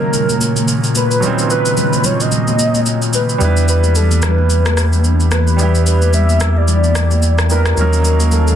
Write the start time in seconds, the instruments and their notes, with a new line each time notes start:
Already playing: analog synth pad A#2 C#3 D#3 F4, grand piano F#3 A#3 C#4 D#4 A#4, soft synth lead A#4
0.02 high conga
0.13 low conga, shaker
0.29 high conga, shaker
0.41 high conga, shaker
0.56 high conga, shaker
0.68 shaker
0.84 shaker
0.95 soft synth lead B4, high conga, shaker
1.11 shaker
1.20 grand piano A#2 F#3 C#4, low conga, shaker
1.25 grand piano C4 D#4
1.39 shaker
1.50 soft synth lead B4, shaker
1.66 shaker
1.77 low conga, shaker
1.93 high conga, shaker
2.04 soft synth lead C#5, low conga, shaker
2.20 soft synth lead D#5, high conga, shaker
2.32 low conga, shaker
2.47 high conga, shaker
2.59 high conga, shaker
2.74 high conga, shaker
2.86 shaker
3.02 shaker
3.13 soft synth lead B4, high conga, shaker
3.29 shaker
3.38 sub bass E2, analog synth pad E3 B3 D4 G4, grand piano G3 B3 D4, low conga, shaker
3.43 grand piano E4 B4
3.57 shaker
3.68 soft synth lead B4, shaker
3.84 high conga, shaker
3.95 soft synth lead A4, low conga, shaker
4.11 high conga, shaker
4.22 soft synth lead B4, cross-stick, low conga, shaker
4.38 high conga
4.50 low conga, shaker
4.66 cross-stick, high conga, shaker
4.77 cross-stick, high conga, shaker
4.93 high conga, shaker
5.04 shaker
5.20 shaker
5.31 soft synth lead B4, cross-stick, high conga, shaker
5.47 shaker
5.56 grand piano G3 B3 D4, low conga, shaker
5.61 grand piano E4 G4
5.75 shaker
5.86 soft synth lead B4, shaker
6.02 high conga, shaker
6.13 soft synth lead E5, low conga, shaker
6.29 high conga, shaker
6.40 cross-stick, low conga, shaker
6.57 soft synth lead D5, high conga
6.68 low conga, shaker
6.84 high conga, shaker
6.95 cross-stick, high conga, shaker
7.11 high conga, shaker
7.22 shaker
7.38 cross-stick, shaker
7.49 grand piano G3 B3 D4 E4 B4, soft synth lead A#4, high conga, shaker
7.66 cross-stick, shaker
7.75 sub bass D#2, analog synth pad D#3 A#3 C#4 F5, grand piano F3 A#3 C#4, low conga, shaker
7.79 grand piano F#3 D#4 A#4
7.93 shaker
8.05 soft synth lead A#4, shaker
8.20 high conga, shaker
8.32 soft synth lead A4, low conga, shaker
8.47 high conga, shaker